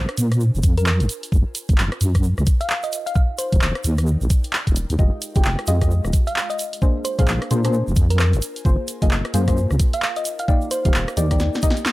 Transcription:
Already playing: analog synth pad D4 A#4 C5
0.09 analog synth pad G#5, cross-stick, closed hi-hat
0.17 wobble bass A#2, closed hi-hat, shaker
0.32 cross-stick, closed hi-hat, shaker
0.40 shaker
0.55 wobble bass F1, shaker
0.63 wobble bass F2, kick, closed hi-hat, shaker
0.77 synth pluck A#4, closed hi-hat, shaker
0.86 synth pluck A#4, clap, shaker
1.00 wobble bass G#1, closed hi-hat, shaker
1.09 analog synth pad F4, closed hi-hat, shaker
1.23 closed hi-hat, shaker
1.32 wobble bass F#1, kick, shaker
1.55 closed hi-hat, shaker
1.69 wobble bass F#1, kick, closed hi-hat, shaker
1.78 wobble bass F#1, clap, shaker
1.92 cross-stick, closed hi-hat
2.01 wobble bass F#2, closed hi-hat, shaker
2.15 kick, cross-stick, closed hi-hat, shaker
2.23 shaker
2.38 wobble bass C#2, cross-stick, shaker
2.47 kick, closed hi-hat, shaker
2.60 synth pluck F5, closed hi-hat, shaker
2.69 clap, shaker
2.83 synth pluck D#5, closed hi-hat, shaker
2.92 analog synth pad D#4, closed hi-hat, shaker
3.06 synth pluck F5, closed hi-hat, shaker
3.15 synth pluck F5, kick, shaker
3.38 synth pluck C5, closed hi-hat, shaker
3.52 wobble bass D#1, kick, closed hi-hat, shaker
3.61 wobble bass D#1, clap, shaker
3.75 cross-stick, closed hi-hat
3.84 wobble bass D#2, analog synth pad D5 G5, closed hi-hat, shaker
3.98 cross-stick, closed hi-hat, shaker
4.07 shaker
4.21 wobble bass A#1, shaker
4.30 kick, closed hi-hat, shaker
4.44 closed hi-hat, shaker
4.53 clap, shaker
4.67 wobble bass D#1, kick, closed hi-hat, shaker
4.76 closed hi-hat, shaker
4.90 wobble bass D#2, closed hi-hat, shaker
4.99 wobble bass F1, synth stab G#3 F4 G4 D#5, analog synth pad F4, kick, shaker
5.22 closed hi-hat, shaker
5.35 wobble bass F1, analog synth pad G#3, synth stab G#3 F4 G4 G5, kick, closed hi-hat, shaker
5.44 wobble bass F1, clap, shaker
5.59 cross-stick, closed hi-hat
5.67 wobble bass F2, synth stab G#3 F4 G4 D#5, closed hi-hat, shaker
5.72 analog synth pad D#5
5.81 synth stab G#3 F4 G4 D#5, kick, cross-stick, closed hi-hat, shaker
5.91 shaker
6.04 wobble bass D#1, cross-stick, shaker
6.13 kick, closed hi-hat, shaker
6.27 synth pluck F5, closed hi-hat, shaker
6.36 clap, shaker
6.50 synth pluck D#5, closed hi-hat, shaker
6.59 analog synth pad D4, closed hi-hat, shaker
6.73 closed hi-hat, shaker
6.82 synth stab A#3 D4 G#4 C5, analog synth pad C5, kick, shaker
6.97 analog synth pad A#4
7.05 synth pluck C5, closed hi-hat, shaker
7.19 wobble bass A#1, synth stab A#3 D4 G#4 F5, synth pluck C5, kick, closed hi-hat, shaker
7.28 wobble bass A#1, analog synth pad G#5, clap, shaker
7.42 cross-stick, closed hi-hat
7.51 wobble bass A#2, synth stab A#3 D4 G#4 C5, closed hi-hat, shaker
7.64 synth stab A#3 D4 G#4 C5, cross-stick, closed hi-hat, shaker
7.73 shaker
7.87 wobble bass F1, shaker
7.96 wobble bass F2, kick, closed hi-hat, shaker
8.10 synth pluck A#4, closed hi-hat, shaker
8.19 synth pluck A#4, clap, shaker
8.33 wobble bass G#1, closed hi-hat, shaker
8.42 analog synth pad F4, closed hi-hat, shaker
8.56 closed hi-hat, shaker
8.65 wobble bass F#1, synth stab A#3 F4 G#4 C5, kick, shaker
8.88 closed hi-hat, shaker
9.02 wobble bass F#1, synth stab A#3 F4 G#4 D#5, kick, closed hi-hat, shaker
9.11 wobble bass F#1, clap, shaker
9.25 cross-stick, closed hi-hat
9.34 wobble bass F#2, synth stab A#3 F4 G#4 C5, closed hi-hat, shaker
9.48 synth stab A#3 F4 G#4 C5, kick, cross-stick, closed hi-hat, shaker
9.57 shaker
9.71 wobble bass C#2, cross-stick, shaker
9.80 kick, closed hi-hat, shaker
9.93 synth pluck F5, closed hi-hat, shaker
10.02 clap, shaker
10.16 synth pluck D#5, closed hi-hat, shaker
10.25 analog synth pad D#4, closed hi-hat, shaker
10.39 synth pluck F5, closed hi-hat, shaker
10.48 synth stab A#3 D#4 G4 D5, synth pluck F5, kick, shaker
10.61 shaker
10.71 synth pluck C5, closed hi-hat, shaker
10.85 wobble bass D#1, synth stab A#3 D#4 G4 F5, kick, closed hi-hat, shaker
10.94 wobble bass D#1, clap, shaker
10.99 analog synth pad G5
11.08 cross-stick, closed hi-hat, shaker
11.17 wobble bass D#2, synth stab A#3 D#4 G4 D5, analog synth pad D5, closed hi-hat, shaker
11.31 synth stab A#3 D#4 G4 D5, kick, cross-stick, closed hi-hat, shaker
11.39 snare, shaker
11.54 snare, shaker
11.62 synth stab A#3 D#4 G4 D#5, kick, closed hi-hat, shaker
11.70 snare
11.77 closed hi-hat, shaker
11.86 snare, clap, shaker

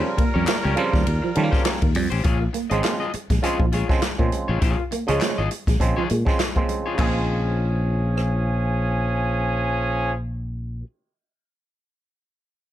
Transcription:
Already playing: clav C#3 F3 G3 C4, horn section G3 F4 A#4
0.04 muted clean electric guitar stroke
0.17 clean electric guitar A#3, muted clean electric guitar stroke, kick, ride
0.34 fingered electric bass F2, clean electric guitar G3 C#4 G4 C#5
0.47 clean electric guitar A#3, muted clean electric guitar stroke, snare, clap, ride
0.63 fingered electric bass C#2, clav G3 C#4, clean electric guitar C#4 G4 C#5
0.76 clav C#3 F3 G3 C4, muted clean electric guitar stroke, ride
0.92 fingered electric bass D#2, clean electric guitar G3, muted clean electric guitar stroke, kick, snare
1.06 fingered electric bass D#2, muted clean electric guitar stroke, ride
1.22 clean electric guitar F3, muted clean electric guitar stroke
1.35 clav C#3 F3 G3 A3, fingered electric bass D#3, clean electric guitar G3, ride
1.44 clav A#3
1.51 clean electric guitar C#4 G4 C5, kick, snare
1.65 muted clean electric guitar stroke, snare, clap, ride
1.81 fingered electric bass D#2, clean electric guitar A#3, muted clean electric guitar stroke, kick, ride
1.95 fingered electric bass F2, clean electric guitar G3, open hi-hat, ride
2.10 fingered electric bass A1, clean electric guitar C#4 G4 C5, ride
2.24 fingered electric bass A#1, clean electric guitar F4 G#4 C#5, kick, closed hi-hat
2.40 muted clean electric guitar stroke
2.53 clean electric guitar A#3, muted clean electric guitar stroke, closed hi-hat
2.70 fingered electric bass G#1, clav C#3 F3 G#3 C4, clean electric guitar G#3 F4 G#4 D#5, closed hi-hat
2.84 clean electric guitar A#3, muted clean electric guitar stroke, snare, clap, closed hi-hat
3.00 clean electric guitar F4 G#4 D#5
3.13 muted clean electric guitar stroke, muted fingered electric bass stroke, closed hi-hat
3.30 fingered electric bass A#1, clean electric guitar G#3, muted clean electric guitar stroke, kick, snare, closed hi-hat
3.42 clav C#3 F3 G#3 C4, clean electric guitar F4 G#4 C#5, muted clean electric guitar stroke, closed hi-hat
3.60 fingered electric bass A#1, clean electric guitar F3, muted clean electric guitar stroke, kick
3.72 clean electric guitar G#3 F4 G#4 C#5, closed hi-hat
3.89 clav C#3 F3 G#3 C4, muted clean electric guitar stroke, kick, snare
4.02 muted clean electric guitar stroke, snare, clap, closed hi-hat
4.18 fingered electric bass A#2, clav C#3 F3 G#3 C4, clean electric guitar A#3, muted clean electric guitar stroke, kick
4.32 clean electric guitar G#3, closed hi-hat
4.48 fingered electric bass A1, clean electric guitar F4 G#4 C#5
4.61 fingered electric bass A#1, clean electric guitar F4 G#4 C#5, kick, closed hi-hat
4.78 muted clean electric guitar stroke
4.91 clean electric guitar A#3, muted clean electric guitar stroke, closed hi-hat
5.07 fingered electric bass C#2, clav C#3 F3 G#3 C#4, clean electric guitar G#3 F4 G#4 D#5, closed hi-hat
5.21 clean electric guitar A#3, muted clean electric guitar stroke, snare, clap, closed hi-hat
5.38 fingered electric bass G#1, clean electric guitar F4 G#4 D#5
5.51 muted clean electric guitar stroke, closed hi-hat
5.67 fingered electric bass A#1, clean electric guitar G#3, muted clean electric guitar stroke, kick, snare, closed hi-hat
5.80 fingered electric bass A#1, clav C#3 F3 G#3 C4, muted clean electric guitar stroke, kick, closed hi-hat
5.97 clean electric guitar F3 F4 G#4 C#5
6.10 fingered electric bass A#2, clean electric guitar G#3, muted clean electric guitar stroke, closed hi-hat
6.25 clav C#3 F3 G#3 C4, muted clean electric guitar stroke, kick, snare
6.39 muted clean electric guitar stroke, snare, clap, closed hi-hat
6.55 clav C3 F3 G#3 C4, clean electric guitar A#3, muted clean electric guitar stroke, kick
6.62 clav C#3
6.69 clean electric guitar G#3, closed hi-hat
6.86 clean electric guitar F4 G#4 C#5
6.95 clav C#3 F3, clean electric guitar A#3 F4, kick, clap, crash
6.99 fingered electric bass A#1, horn section F3 C#4 G#4, clav G#3 C4, clean electric guitar G#4
8.17 cross-stick

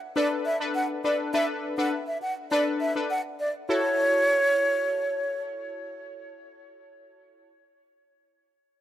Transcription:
0.16 synth stab D4 A4 B4, flute D5
0.46 flute E5
0.60 synth stab D4 A4 B4
0.75 flute F#5
1.04 synth stab D4 A4 B4, flute D5
1.34 synth stab D4 A4 B4, flute E5
1.78 synth stab D4 A4 B4, flute F#5
2.07 flute E5
2.22 flute F#5
2.51 synth stab D4 A4 B4, flute D5
2.81 flute E5
2.96 synth stab D4 A4 B4
3.10 flute F#5
3.40 flute D5
3.69 synth stab E4 F#4 A4, flute C#5

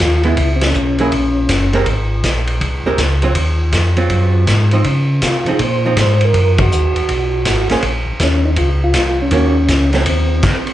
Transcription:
Already playing: tonewheel organ F4
0.00 tonewheel organ D#2, kick, snare, hi-hat pedal, ride
0.23 hollow-body jazz guitar G#3 B3 E4, ride
0.28 tonewheel organ E4
0.37 tonewheel organ C#2, kick, ride
0.56 tonewheel organ C4
0.61 snare, ride
0.67 tonewheel organ C#4
0.74 tonewheel organ B1, hi-hat pedal
0.98 hollow-body jazz guitar F#3 A#3 E4 G#4, ride
1.12 tonewheel organ A#1, kick, ride
1.49 tonewheel organ F#1, kick, snare, hi-hat pedal, ride
1.73 hollow-body jazz guitar G#3 C4 G4 A#4, ride
1.86 tonewheel organ G#1, kick, ride
2.24 tonewheel organ A#1, kick, snare, hi-hat pedal, ride
2.47 ride
2.61 tonewheel organ C2, kick, ride
2.86 tonewheel organ C2, hollow-body jazz guitar G#3 C4 G4 A#4
2.98 tonewheel organ C#2, kick, snare, hi-hat pedal, ride
3.22 hollow-body jazz guitar F#3 C4 F4, ride
3.35 tonewheel organ D#2, kick, ride
3.72 tonewheel organ F2, kick, snare, hi-hat pedal, ride
3.97 hollow-body jazz guitar F#3 C4 F4, ride
4.10 tonewheel organ F#2, kick, ride
4.47 tonewheel organ G#2, kick, snare, hi-hat pedal, ride
4.71 hollow-body jazz guitar F3 C4 D#4, ride
4.84 tonewheel organ C#3, kick, ride
5.22 tonewheel organ C3 F4, kick, snare, hi-hat pedal, ride
5.46 tonewheel organ C3, hollow-body jazz guitar F3 C4 D#4, ride
5.50 tonewheel organ G#4
5.59 tonewheel organ A#2, kick, ride
5.63 tonewheel organ C5
5.85 hollow-body jazz guitar F3 C4 D#4
5.97 tonewheel organ G#2, kick, snare, hi-hat pedal, ride
6.21 tonewheel organ A#4, ride
6.34 tonewheel organ F#2, kick, ride
6.58 tonewheel organ F#4, kick, ride
6.72 tonewheel organ D#2, hi-hat pedal
6.95 tonewheel organ D#2, ride
7.09 tonewheel organ B1, kick, ride
7.45 tonewheel organ G#1, kick, snare, hi-hat pedal, ride
7.69 tonewheel organ G#1, hollow-body jazz guitar A#3 C#4 G#4 C5, snare, ride
7.83 tonewheel organ A#1, kick, ride
8.06 tonewheel organ A#1
8.20 tonewheel organ D#2 C#4, kick, snare, hi-hat pedal, ride
8.45 tonewheel organ D#4
8.56 tonewheel organ C#2 F4, kick, ride
8.84 tonewheel organ F4
8.94 tonewheel organ C2, kick, snare, hi-hat pedal, ride
9.22 tonewheel organ C#4
9.31 tonewheel organ D#2 C#4, hollow-body jazz guitar D#3 A#3 C#4 F#4, kick, ride
9.68 tonewheel organ C#2, kick, snare, hi-hat pedal, ride
9.93 hollow-body jazz guitar F#3 A3 C4, snare, ride
10.06 tonewheel organ D#2 C4, kick, ride
10.43 kick, snare, hi-hat pedal, crash, ride
10.67 ride

